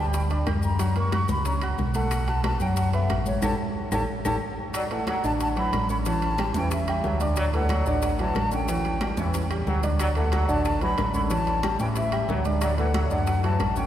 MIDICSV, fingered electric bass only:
0, 0, Header, 1, 2, 480
1, 0, Start_track
1, 0, Key_signature, 2, "major"
1, 0, Tempo, 328407
1, 1163, Time_signature, 4, 2, 24, 8
1, 20265, End_track
2, 0, Start_track
2, 0, Title_t, "Fingered electric bass"
2, 0, Program_c, 0, 33
2, 0, Note_on_c, 0, 38, 96
2, 629, Note_off_c, 0, 38, 0
2, 679, Note_on_c, 0, 42, 80
2, 1799, Note_off_c, 0, 42, 0
2, 1879, Note_on_c, 0, 37, 85
2, 2552, Note_off_c, 0, 37, 0
2, 2598, Note_on_c, 0, 35, 83
2, 3720, Note_off_c, 0, 35, 0
2, 3799, Note_on_c, 0, 42, 95
2, 4472, Note_off_c, 0, 42, 0
2, 4527, Note_on_c, 0, 33, 89
2, 4974, Note_off_c, 0, 33, 0
2, 4998, Note_on_c, 0, 33, 95
2, 5181, Note_off_c, 0, 33, 0
2, 5727, Note_on_c, 0, 33, 91
2, 5906, Note_off_c, 0, 33, 0
2, 6203, Note_on_c, 0, 33, 93
2, 6385, Note_off_c, 0, 33, 0
2, 7651, Note_on_c, 0, 33, 91
2, 8321, Note_off_c, 0, 33, 0
2, 8369, Note_on_c, 0, 33, 88
2, 9490, Note_off_c, 0, 33, 0
2, 9565, Note_on_c, 0, 40, 94
2, 10239, Note_off_c, 0, 40, 0
2, 10292, Note_on_c, 0, 38, 89
2, 11411, Note_off_c, 0, 38, 0
2, 11486, Note_on_c, 0, 33, 94
2, 12160, Note_off_c, 0, 33, 0
2, 12198, Note_on_c, 0, 33, 90
2, 13324, Note_off_c, 0, 33, 0
2, 13402, Note_on_c, 0, 40, 88
2, 14077, Note_off_c, 0, 40, 0
2, 14130, Note_on_c, 0, 38, 88
2, 15248, Note_off_c, 0, 38, 0
2, 15326, Note_on_c, 0, 33, 95
2, 15998, Note_off_c, 0, 33, 0
2, 16043, Note_on_c, 0, 33, 88
2, 17162, Note_off_c, 0, 33, 0
2, 17234, Note_on_c, 0, 45, 97
2, 17909, Note_off_c, 0, 45, 0
2, 17952, Note_on_c, 0, 38, 85
2, 19074, Note_off_c, 0, 38, 0
2, 19148, Note_on_c, 0, 42, 91
2, 19823, Note_off_c, 0, 42, 0
2, 19867, Note_on_c, 0, 33, 84
2, 20265, Note_off_c, 0, 33, 0
2, 20265, End_track
0, 0, End_of_file